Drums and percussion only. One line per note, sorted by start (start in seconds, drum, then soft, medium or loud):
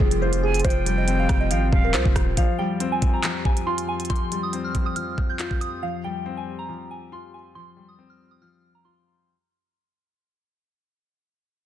0.00 kick loud
0.11 closed hi-hat medium
0.33 closed hi-hat medium
0.54 closed hi-hat medium
0.60 closed hi-hat medium
0.65 kick loud
0.65 closed hi-hat medium
0.70 closed hi-hat medium
0.86 closed hi-hat medium
1.08 closed hi-hat medium
1.29 kick loud
1.29 cross-stick loud
1.29 closed hi-hat medium
1.51 closed hi-hat medium
1.73 kick loud
1.94 clap loud
1.94 closed hi-hat medium
2.05 kick medium
2.16 kick loud
2.16 cross-stick loud
2.16 closed hi-hat medium
2.37 kick loud
2.37 closed hi-hat medium
2.80 closed hi-hat medium
3.02 kick medium
3.02 closed hi-hat medium
3.23 clap loud
3.23 closed hi-hat medium
3.45 kick loud
3.57 closed hi-hat medium
3.78 closed hi-hat medium
4.00 closed hi-hat medium
4.05 closed hi-hat medium
4.10 kick loud
4.10 closed hi-hat medium
4.16 closed hi-hat medium
4.32 closed hi-hat medium
4.53 closed hi-hat medium
4.75 kick medium
4.75 closed hi-hat medium
4.96 closed hi-hat medium
5.18 kick medium
5.39 clap loud
5.39 closed hi-hat medium
5.51 kick medium
5.61 closed hi-hat medium